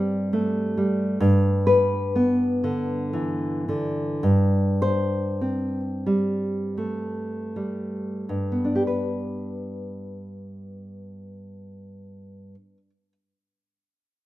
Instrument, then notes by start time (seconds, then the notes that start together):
nylon-string guitar
Already playing: G2 G3 C4
0.33 A3
0.77 G3
1.20 G2
1.67 B4
2.16 B3
2.64 D3
3.13 E3
3.68 D3
4.23 G2
4.82 C5
5.41 C4
6.06 G3
6.78 A3
7.56 G3
8.29 G2
8.52 B3
8.65 D4
8.75 G4
8.87 B4